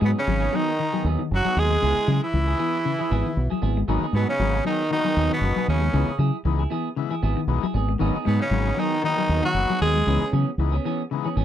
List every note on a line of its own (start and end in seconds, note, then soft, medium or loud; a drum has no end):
0.01 0.12 G#2 loud
0.01 0.10 B2 medium
0.01 0.18 F#3 medium
0.01 0.18 G#3 medium
0.01 0.18 B3 medium
0.01 0.18 D#4 medium
0.01 0.18 G#4 medium
0.05 0.12 B2 medium
0.05 0.11 B3 medium
0.18 0.56 C#3 medium
0.18 0.58 C#3 medium
0.18 0.58 C#4 medium
0.27 0.47 G#1 medium
0.27 0.44 F#3 medium
0.40 0.51 B3 soft
0.40 0.51 D#4 medium
0.40 0.52 G#4 medium
0.52 1.05 D#3 medium
0.52 0.69 F#3 medium
0.52 0.70 F#3 medium
0.52 0.69 B3 medium
0.52 0.69 D#4 medium
0.52 0.70 G#4 medium
0.56 1.06 D#3 medium
0.56 1.06 D#4 medium
0.79 0.88 D#3 medium
0.93 1.10 F#3 medium
0.93 1.04 B3 soft
0.93 1.05 D#4 soft
0.93 1.04 G#4 medium
1.04 1.15 D#2 medium
1.04 1.21 F#3 medium
1.04 1.21 B3 medium
1.04 1.22 D#4 medium
1.04 1.22 G#4 medium
1.19 1.35 D#3 medium
1.31 1.42 F#1 loud
1.31 1.61 F#3 medium
1.31 1.60 F#3 medium
1.36 1.60 F#4 loud
1.45 1.61 F#3 medium
1.45 1.56 B3 medium
1.45 1.56 D#4 soft
1.45 1.56 G#4 medium
1.56 1.76 D#2 medium
1.56 1.73 F#3 medium
1.56 2.23 G#3 loud
1.56 2.24 G#3 medium
1.56 1.73 B3 medium
1.56 1.73 D#4 medium
1.56 1.73 G#4 medium
1.56 2.23 G#4 loud
1.70 1.78 G#3 medium
1.82 1.94 C#2 loud
1.82 1.99 C#3 medium
1.82 1.97 B3 medium
1.82 1.96 E4 medium
1.82 1.95 G#4 medium
1.96 2.07 E4 soft
1.96 2.07 G#4 medium
2.08 2.19 C#3 medium
2.08 2.24 F#3 medium
2.08 2.24 E4 medium
2.08 2.25 G#4 medium
2.24 3.59 E3 medium
2.24 3.60 E3 medium
2.24 3.59 E4 medium
2.34 2.53 C#2 loud
2.34 2.51 E3 medium
2.47 2.58 E4 soft
2.47 2.58 G#4 medium
2.58 2.76 E3 medium
2.58 2.75 B3 medium
2.58 2.76 G#4 medium
2.58 muted clean electric guitar stroke medium
2.85 2.94 C#3 medium
2.99 3.17 E3 medium
2.99 3.10 E4 medium
2.99 3.10 G#4 medium
3.11 3.22 G#1 loud
3.11 3.27 B3 medium
3.11 3.28 E4 medium
3.11 3.28 G#4 medium
3.26 3.42 D#3 medium
3.37 3.48 B1 medium
3.50 3.68 F#3 medium
3.50 3.61 E4 medium
3.50 3.62 G#4 medium
3.62 3.82 G#1 loud
3.62 3.79 B3 medium
3.62 3.79 E4 medium
3.62 3.79 G#4 medium
3.77 3.84 G#3 medium
3.88 3.99 G#1 loud
3.88 4.06 D#3 medium
3.88 4.02 F#3 medium
3.88 4.06 F#3 loud
3.88 4.06 A#3 medium
3.88 4.02 B3 medium
3.88 4.06 B3 medium
3.88 4.03 D#4 medium
3.88 4.07 D#4 loud
3.88 4.02 G#4 medium
4.02 4.15 B3 soft
4.02 4.15 D#4 medium
4.02 4.14 G#4 medium
4.02 muted fingered electric bass stroke soft
4.13 4.24 G#2 medium
4.13 4.27 B2 medium
4.13 4.31 F#3 medium
4.13 4.31 G#3 medium
4.13 4.32 B3 medium
4.13 4.28 B3 medium
4.13 4.32 D#4 medium
4.13 4.32 G#4 medium
4.29 4.64 C#3 medium
4.29 4.64 C#4 loud
4.39 4.59 G#1 medium
4.39 4.57 F#3 medium
4.39 4.57 A#3 medium
4.39 4.58 B3 medium
4.39 4.58 D#4 medium
4.55 4.65 B3 soft
4.55 4.66 G#4 medium
4.55 muted clean electric guitar stroke medium
4.65 4.90 D#3 loud
4.65 4.91 D#3 medium
4.65 4.82 F#3 medium
4.65 4.82 B3 medium
4.65 4.83 D#4 medium
4.65 4.90 D#4 loud
4.65 4.83 G#4 medium
4.90 5.00 D#3 medium
4.90 5.30 D#3 medium
4.90 5.08 F#3 medium
4.90 5.08 A#3 medium
4.90 5.09 B3 medium
4.90 5.29 D#4 loud
4.90 5.09 F#4 medium
4.96 5.31 D#3 medium
5.04 5.22 F#3 medium
5.04 5.16 B3 soft
5.04 5.17 D#4 medium
5.04 5.17 G#4 medium
5.17 5.28 D#2 medium
5.17 5.34 F#3 medium
5.17 5.34 B3 medium
5.17 5.34 D#4 medium
5.17 5.34 G#4 medium
5.30 5.66 B2 medium
5.30 5.47 D#3 medium
5.30 5.67 B3 medium
5.36 5.68 B2 medium
5.41 5.53 F#1 loud
5.41 5.61 F#3 medium
5.41 5.61 A#3 medium
5.41 5.61 B3 medium
5.45 5.62 D#4 medium
5.56 5.73 F#3 medium
5.56 5.68 B3 soft
5.56 5.68 D#4 soft
5.56 5.69 G#4 medium
5.68 5.88 D#2 loud
5.68 6.17 C#3 medium
5.68 6.18 C#3 medium
5.68 5.85 F#3 medium
5.68 5.86 B3 medium
5.68 6.17 C#4 loud
5.68 5.86 D#4 medium
5.68 5.86 G#4 medium
5.81 5.89 G#3 medium
5.93 6.05 C#2 loud
5.93 6.11 C#3 loud
5.93 6.12 E3 medium
5.93 6.12 G#3 medium
5.93 6.08 B3 medium
5.93 6.13 B3 medium
5.93 6.13 D#4 medium
5.93 6.08 E4 medium
5.93 6.07 G#4 medium
6.08 6.18 G#4 medium
6.08 muted clean electric guitar stroke soft
6.19 6.30 C#3 loud
6.19 6.36 F#3 medium
6.19 6.36 E4 medium
6.19 6.37 G#4 medium
6.45 6.65 C#2 medium
6.45 6.63 E3 loud
6.45 6.62 E3 medium
6.45 6.63 G#3 medium
6.45 6.64 B3 medium
6.45 6.64 D#4 loud
6.59 6.69 E4 medium
6.59 6.70 G#4 medium
6.70 6.88 E3 medium
6.70 6.88 B3 medium
6.70 6.88 E4 medium
6.70 6.88 G#4 medium
6.96 7.06 C#3 medium
6.96 7.15 E3 medium
6.96 7.15 G#3 medium
6.96 7.15 B3 medium
6.96 7.16 E4 loud
7.11 7.28 E3 medium
7.11 7.22 E4 medium
7.11 7.23 G#4 medium
7.22 7.34 G#1 medium
7.22 7.39 B3 medium
7.22 7.40 E4 medium
7.22 7.40 G#4 medium
7.37 7.54 D#3 medium
7.47 7.59 B1 medium
7.47 7.66 E3 loud
7.47 7.66 G#3 medium
7.47 7.66 B3 medium
7.47 7.67 D#4 loud
7.63 7.80 F#3 medium
7.63 7.74 E4 medium
7.63 7.75 G#4 medium
7.74 7.94 G#1 loud
7.74 7.91 B3 medium
7.74 7.92 G#4 medium
7.74 muted clean electric guitar stroke medium
7.89 7.96 G#3 medium
7.99 8.12 G#1 loud
7.99 8.16 D#3 medium
7.99 8.17 F#3 loud
7.99 8.15 F#3 medium
7.99 8.18 A#3 medium
7.99 8.15 B3 medium
7.99 8.18 B3 loud
7.99 8.15 D#4 loud
7.99 8.19 D#4 loud
7.99 8.14 G#4 medium
8.15 8.25 B3 soft
8.15 8.25 D#4 medium
8.15 8.26 G#4 medium
8.25 8.38 G#2 medium
8.25 8.38 B2 medium
8.25 8.40 B2 medium
8.25 8.43 F#3 medium
8.25 8.42 G#3 medium
8.25 8.43 B3 medium
8.25 8.40 B3 medium
8.25 8.43 D#4 medium
8.25 8.43 G#4 medium
8.39 8.77 C#3 medium
8.39 8.82 C#3 medium
8.39 8.81 C#4 loud
8.51 8.71 G#1 medium
8.51 8.68 F#3 medium
8.51 8.70 F#3 medium
8.51 8.70 A#3 medium
8.51 8.70 B3 medium
8.51 8.71 C#4 medium
8.66 8.77 B3 soft
8.66 8.78 D#4 medium
8.66 8.78 G#4 medium
8.75 9.01 D#3 medium
8.75 8.94 F#3 medium
8.75 8.95 F#3 medium
8.75 8.95 B3 medium
8.75 8.95 D#4 medium
8.75 8.95 G#4 medium
8.80 9.05 D#3 medium
8.80 9.05 D#4 medium
9.01 9.40 D#3 medium
9.01 9.13 D#3 medium
9.01 9.42 D#3 medium
9.01 9.21 F#3 medium
9.01 9.22 A#3 medium
9.01 9.22 B3 medium
9.01 9.22 D#4 medium
9.05 9.42 D#4 loud
9.18 9.35 F#3 medium
9.18 9.29 B3 soft
9.18 9.29 D#4 soft
9.18 9.30 G#4 medium
9.29 9.40 D#2 loud
9.29 9.46 F#3 medium
9.29 9.47 B3 medium
9.29 9.47 D#4 medium
9.29 9.47 G#4 medium
9.42 9.61 D#3 medium
9.42 9.78 F#3 loud
9.42 9.79 F#3 medium
9.42 9.80 F#4 loud
9.54 9.66 F#1 medium
9.54 9.73 F#3 medium
9.54 9.73 A#3 medium
9.54 9.74 B3 medium
9.54 9.74 D#4 medium
9.70 9.86 F#3 medium
9.70 9.80 B3 soft
9.70 9.80 D#4 soft
9.70 9.81 G#4 medium
9.81 10.01 D#2 loud
9.81 9.98 F#3 medium
9.81 10.29 G#3 medium
9.81 10.30 G#3 medium
9.81 9.98 B3 medium
9.81 9.98 D#4 medium
9.81 10.30 G#4 loud
9.81 9.98 G#4 medium
9.96 10.03 G#3 medium
10.07 10.18 C#2 loud
10.07 10.24 C#3 medium
10.07 10.21 E3 medium
10.07 10.25 E3 medium
10.07 10.25 G#3 medium
10.07 10.21 B3 medium
10.07 10.25 B3 medium
10.07 10.20 C#4 medium
10.07 10.25 D#4 medium
10.07 10.20 G#4 medium
10.21 10.31 B3 soft
10.21 10.33 C#4 medium
10.21 10.32 G#4 medium
10.32 10.44 C#3 medium
10.32 10.49 E3 medium
10.32 10.50 F#3 medium
10.32 10.49 B3 medium
10.32 10.50 C#4 medium
10.32 10.50 G#4 medium
10.58 10.78 C#2 medium
10.58 10.76 E3 medium
10.58 10.77 G#3 medium
10.58 10.77 B3 medium
10.58 10.77 D#4 loud
10.72 10.84 B3 soft
10.72 10.84 C#4 medium
10.72 10.84 G#4 medium
10.85 11.01 E3 medium
10.85 11.02 E3 medium
10.85 11.01 B3 medium
10.85 11.01 C#4 medium
10.85 11.02 G#4 medium
11.11 11.20 C#3 medium
11.11 11.28 E3 medium
11.11 11.29 G#3 medium
11.11 11.29 B3 medium
11.11 11.29 D#4 loud
11.24 11.42 E3 medium
11.24 11.36 B3 soft
11.24 11.36 C#4 medium
11.24 11.36 G#4 medium
11.36 11.45 G#1 medium
11.36 11.45 E3 medium
11.36 11.45 B3 medium
11.36 11.45 C#4 medium
11.36 11.45 G#4 medium